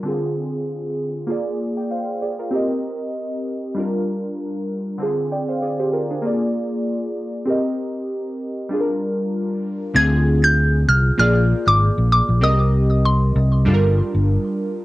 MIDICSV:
0, 0, Header, 1, 4, 480
1, 0, Start_track
1, 0, Key_signature, -3, "minor"
1, 0, Tempo, 618557
1, 43, Time_signature, 4, 2, 24, 8
1, 11523, End_track
2, 0, Start_track
2, 0, Title_t, "Synth pluck"
2, 0, Program_c, 0, 84
2, 7728, Note_on_c, 0, 92, 116
2, 8100, Note_on_c, 0, 91, 110
2, 8108, Note_off_c, 0, 92, 0
2, 8448, Note_on_c, 0, 89, 105
2, 8456, Note_off_c, 0, 91, 0
2, 8678, Note_off_c, 0, 89, 0
2, 8687, Note_on_c, 0, 89, 104
2, 9061, Note_on_c, 0, 86, 95
2, 9068, Note_off_c, 0, 89, 0
2, 9382, Note_off_c, 0, 86, 0
2, 9407, Note_on_c, 0, 86, 92
2, 9650, Note_on_c, 0, 87, 101
2, 9652, Note_off_c, 0, 86, 0
2, 10130, Note_on_c, 0, 84, 77
2, 10141, Note_off_c, 0, 87, 0
2, 10815, Note_off_c, 0, 84, 0
2, 11523, End_track
3, 0, Start_track
3, 0, Title_t, "Synth keys"
3, 0, Program_c, 1, 88
3, 0, Control_c, 1, 64, 127
3, 23, Note_on_c, 1, 50, 74
3, 37, Note_on_c, 1, 60, 67
3, 49, Note_on_c, 1, 65, 68
3, 53, Control_c, 1, 64, 0
3, 62, Note_on_c, 1, 68, 75
3, 180, Control_c, 1, 64, 127
3, 974, Note_off_c, 1, 50, 0
3, 981, Note_off_c, 1, 60, 0
3, 983, Note_on_c, 1, 58, 71
3, 987, Note_off_c, 1, 65, 0
3, 994, Note_off_c, 1, 68, 0
3, 997, Note_on_c, 1, 65, 67
3, 1009, Note_on_c, 1, 68, 70
3, 1012, Control_c, 1, 64, 0
3, 1022, Note_on_c, 1, 74, 84
3, 1171, Control_c, 1, 64, 127
3, 1235, Note_off_c, 1, 65, 0
3, 1242, Note_off_c, 1, 68, 0
3, 1248, Note_off_c, 1, 74, 0
3, 1375, Note_on_c, 1, 79, 60
3, 1379, Note_on_c, 1, 74, 51
3, 1478, Note_off_c, 1, 79, 0
3, 1480, Note_off_c, 1, 74, 0
3, 1481, Note_on_c, 1, 77, 67
3, 1487, Note_on_c, 1, 72, 56
3, 1710, Note_off_c, 1, 77, 0
3, 1713, Note_off_c, 1, 72, 0
3, 1722, Note_on_c, 1, 74, 63
3, 1727, Note_on_c, 1, 68, 55
3, 1848, Note_off_c, 1, 74, 0
3, 1850, Note_off_c, 1, 68, 0
3, 1855, Note_on_c, 1, 70, 62
3, 1860, Note_on_c, 1, 65, 52
3, 1934, Note_off_c, 1, 58, 0
3, 1945, Note_on_c, 1, 60, 76
3, 1958, Note_on_c, 1, 67, 68
3, 1961, Note_off_c, 1, 70, 0
3, 1970, Note_on_c, 1, 70, 67
3, 1973, Control_c, 1, 64, 0
3, 1983, Note_on_c, 1, 75, 83
3, 2086, Note_off_c, 1, 65, 0
3, 2101, Control_c, 1, 64, 127
3, 2895, Note_off_c, 1, 60, 0
3, 2901, Note_off_c, 1, 67, 0
3, 2906, Note_on_c, 1, 55, 74
3, 2908, Note_off_c, 1, 70, 0
3, 2914, Note_off_c, 1, 75, 0
3, 2919, Note_on_c, 1, 62, 67
3, 2932, Note_on_c, 1, 65, 67
3, 2934, Control_c, 1, 64, 0
3, 2945, Note_on_c, 1, 70, 81
3, 3090, Control_c, 1, 64, 127
3, 3855, Note_off_c, 1, 55, 0
3, 3862, Note_off_c, 1, 62, 0
3, 3865, Note_on_c, 1, 50, 72
3, 3868, Note_off_c, 1, 65, 0
3, 3875, Note_off_c, 1, 70, 0
3, 3876, Note_on_c, 1, 60, 66
3, 3890, Note_on_c, 1, 65, 65
3, 3895, Control_c, 1, 64, 0
3, 3902, Note_on_c, 1, 68, 77
3, 4048, Control_c, 1, 64, 127
3, 4122, Note_off_c, 1, 65, 0
3, 4125, Note_on_c, 1, 79, 62
3, 4128, Note_off_c, 1, 68, 0
3, 4130, Note_on_c, 1, 74, 52
3, 4250, Note_off_c, 1, 79, 0
3, 4252, Note_off_c, 1, 74, 0
3, 4257, Note_on_c, 1, 77, 65
3, 4261, Note_on_c, 1, 72, 56
3, 4359, Note_off_c, 1, 77, 0
3, 4361, Note_off_c, 1, 72, 0
3, 4363, Note_on_c, 1, 74, 71
3, 4367, Note_on_c, 1, 68, 62
3, 4489, Note_off_c, 1, 74, 0
3, 4491, Note_off_c, 1, 68, 0
3, 4495, Note_on_c, 1, 72, 67
3, 4499, Note_on_c, 1, 67, 56
3, 4598, Note_off_c, 1, 72, 0
3, 4600, Note_off_c, 1, 67, 0
3, 4602, Note_on_c, 1, 70, 65
3, 4608, Note_on_c, 1, 65, 56
3, 4728, Note_off_c, 1, 70, 0
3, 4731, Note_off_c, 1, 65, 0
3, 4737, Note_on_c, 1, 68, 60
3, 4741, Note_on_c, 1, 62, 50
3, 4815, Note_off_c, 1, 50, 0
3, 4820, Note_off_c, 1, 60, 0
3, 4826, Note_on_c, 1, 58, 78
3, 4838, Note_on_c, 1, 65, 69
3, 4842, Note_off_c, 1, 68, 0
3, 4852, Note_on_c, 1, 68, 69
3, 4854, Control_c, 1, 64, 0
3, 4865, Note_on_c, 1, 74, 84
3, 4966, Note_off_c, 1, 62, 0
3, 4979, Control_c, 1, 64, 127
3, 5775, Note_off_c, 1, 58, 0
3, 5782, Note_off_c, 1, 65, 0
3, 5784, Note_on_c, 1, 60, 76
3, 5788, Note_off_c, 1, 68, 0
3, 5795, Note_off_c, 1, 74, 0
3, 5797, Note_on_c, 1, 67, 68
3, 5811, Note_on_c, 1, 70, 69
3, 5813, Control_c, 1, 64, 0
3, 5823, Note_on_c, 1, 75, 78
3, 5930, Control_c, 1, 64, 127
3, 6734, Note_off_c, 1, 60, 0
3, 6741, Note_off_c, 1, 67, 0
3, 6743, Note_on_c, 1, 55, 73
3, 6748, Note_off_c, 1, 70, 0
3, 6754, Note_off_c, 1, 75, 0
3, 6755, Note_on_c, 1, 62, 69
3, 6768, Note_on_c, 1, 65, 68
3, 6772, Control_c, 1, 64, 0
3, 6781, Note_on_c, 1, 68, 65
3, 6828, Note_off_c, 1, 68, 0
3, 6832, Note_on_c, 1, 70, 81
3, 6892, Control_c, 1, 64, 127
3, 7694, Note_off_c, 1, 55, 0
3, 7700, Note_off_c, 1, 62, 0
3, 7707, Note_off_c, 1, 65, 0
3, 7712, Note_on_c, 1, 50, 75
3, 7718, Note_on_c, 1, 60, 68
3, 7725, Note_on_c, 1, 65, 67
3, 7732, Note_on_c, 1, 68, 85
3, 7734, Control_c, 1, 64, 0
3, 7739, Note_off_c, 1, 70, 0
3, 7882, Control_c, 1, 64, 127
3, 8430, Note_off_c, 1, 50, 0
3, 8433, Note_off_c, 1, 60, 0
3, 8437, Note_off_c, 1, 65, 0
3, 8440, Note_off_c, 1, 68, 0
3, 8672, Note_on_c, 1, 58, 76
3, 8678, Note_on_c, 1, 65, 73
3, 8686, Note_on_c, 1, 68, 74
3, 8692, Control_c, 1, 64, 0
3, 8692, Note_on_c, 1, 74, 85
3, 8852, Control_c, 1, 64, 127
3, 9390, Note_off_c, 1, 58, 0
3, 9393, Note_off_c, 1, 65, 0
3, 9397, Note_off_c, 1, 68, 0
3, 9400, Note_off_c, 1, 74, 0
3, 9632, Note_on_c, 1, 60, 72
3, 9637, Note_on_c, 1, 67, 69
3, 9644, Note_on_c, 1, 70, 71
3, 9650, Note_on_c, 1, 75, 84
3, 9652, Control_c, 1, 64, 0
3, 9782, Control_c, 1, 64, 127
3, 10350, Note_off_c, 1, 60, 0
3, 10353, Note_off_c, 1, 67, 0
3, 10356, Note_off_c, 1, 70, 0
3, 10359, Note_off_c, 1, 75, 0
3, 10593, Note_on_c, 1, 55, 82
3, 10599, Note_on_c, 1, 62, 73
3, 10605, Note_on_c, 1, 65, 74
3, 10612, Control_c, 1, 64, 0
3, 10613, Note_on_c, 1, 69, 69
3, 10662, Note_on_c, 1, 70, 83
3, 10663, Note_off_c, 1, 69, 0
3, 10727, Control_c, 1, 64, 127
3, 11311, Note_off_c, 1, 55, 0
3, 11314, Note_off_c, 1, 62, 0
3, 11317, Note_off_c, 1, 65, 0
3, 11345, Note_off_c, 1, 70, 0
3, 11523, End_track
4, 0, Start_track
4, 0, Title_t, "Fingered electric bass"
4, 0, Program_c, 2, 33
4, 7724, Note_on_c, 2, 38, 102
4, 8412, Note_off_c, 2, 38, 0
4, 8444, Note_on_c, 2, 36, 93
4, 8613, Note_off_c, 2, 36, 0
4, 8682, Note_on_c, 2, 34, 113
4, 8945, Note_off_c, 2, 34, 0
4, 9055, Note_on_c, 2, 32, 97
4, 9224, Note_off_c, 2, 32, 0
4, 9295, Note_on_c, 2, 34, 101
4, 9464, Note_off_c, 2, 34, 0
4, 9535, Note_on_c, 2, 34, 89
4, 9642, Note_off_c, 2, 34, 0
4, 9642, Note_on_c, 2, 36, 109
4, 10332, Note_off_c, 2, 36, 0
4, 10363, Note_on_c, 2, 36, 100
4, 10603, Note_on_c, 2, 31, 116
4, 10614, Note_off_c, 2, 36, 0
4, 10865, Note_off_c, 2, 31, 0
4, 10976, Note_on_c, 2, 31, 91
4, 11145, Note_off_c, 2, 31, 0
4, 11523, End_track
0, 0, End_of_file